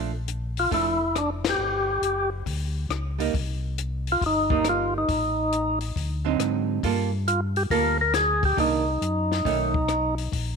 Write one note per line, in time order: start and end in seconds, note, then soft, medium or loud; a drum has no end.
0.00 0.67 A#1 medium
0.00 0.10 F3 medium
0.00 0.11 A3 medium
0.00 0.11 D4 medium
0.28 closed hi-hat medium
0.57 0.72 F4 medium
0.57 open hi-hat soft
0.71 1.55 F1 medium
0.71 0.97 F3 medium
0.71 0.97 A3 medium
0.71 0.97 D4 medium
0.71 1.17 E4 medium
0.71 kick soft
0.71 open hi-hat soft
1.16 1.30 D4 medium
1.16 cross-stick medium
1.16 closed hi-hat soft
1.45 snare medium
1.45 ride medium
1.49 2.30 G4 medium
1.58 1.99 G1 medium
2.02 2.43 F#1 medium
2.02 closed hi-hat soft
2.46 2.87 D2 medium
2.46 kick soft
2.46 open hi-hat soft
2.89 3.30 C#2 medium
2.89 cross-stick medium
2.89 closed hi-hat soft
3.19 3.32 G3 medium
3.19 3.32 A#3 medium
3.19 3.32 D#4 medium
3.19 open hi-hat soft
3.34 4.17 C2 medium
3.34 kick soft
3.34 open hi-hat soft
3.78 closed hi-hat medium
4.07 open hi-hat soft
4.12 4.24 F4 medium
4.21 5.04 G1 medium
4.21 kick soft
4.21 open hi-hat soft
4.26 4.68 D#4 loud
4.50 5.05 G3 medium
4.50 5.05 A#3 medium
4.50 5.06 D#4 medium
4.50 kick medium
4.64 cross-stick medium
4.64 closed hi-hat soft
4.69 4.94 F4 medium
4.98 5.79 D#4 medium
5.08 5.91 A1 medium
5.08 kick soft
5.08 open hi-hat soft
5.52 closed hi-hat soft
5.81 open hi-hat soft
5.96 6.36 D2 medium
5.96 kick soft
5.96 open hi-hat soft
6.25 6.80 D3 medium
6.25 6.80 F#3 medium
6.25 6.80 C4 medium
6.25 6.81 D#4 medium
6.39 6.80 G#2 medium
6.39 cross-stick medium
6.39 closed hi-hat medium
6.83 7.66 G2 medium
6.83 7.09 G3 medium
6.83 7.09 A#3 medium
6.83 7.10 F4 medium
6.83 7.10 A4 medium
6.83 kick soft
6.83 open hi-hat soft
7.28 7.41 F4 medium
7.28 closed hi-hat medium
7.56 7.63 G4 medium
7.56 open hi-hat soft
7.70 8.53 D2 medium
7.70 7.97 G3 medium
7.70 7.97 A#3 medium
7.70 7.97 F4 medium
7.70 7.97 A4 medium
7.70 7.98 A#4 loud
7.70 kick soft
7.70 open hi-hat soft
8.01 8.14 A#4 medium
8.14 8.44 G#4 medium
8.14 cross-stick medium
8.14 snare soft
8.14 closed hi-hat medium
8.43 8.59 G4 medium
8.43 kick medium
8.43 open hi-hat soft
8.57 8.98 C2 medium
8.57 8.83 D#3 medium
8.57 8.84 A#3 medium
8.57 8.84 D4 medium
8.57 10.15 D#4 medium
8.57 kick soft
8.57 open hi-hat soft
9.01 9.42 F#2 medium
9.01 closed hi-hat medium
9.32 snare soft
9.45 10.28 B1 medium
9.45 9.71 D#3 medium
9.45 9.72 A3 medium
9.45 9.71 C#4 medium
9.45 kick soft
9.45 open hi-hat soft
9.74 kick soft
9.88 cross-stick medium
9.88 closed hi-hat soft
10.18 open hi-hat soft
10.32 10.56 A#1 medium
10.32 kick soft
10.32 open hi-hat soft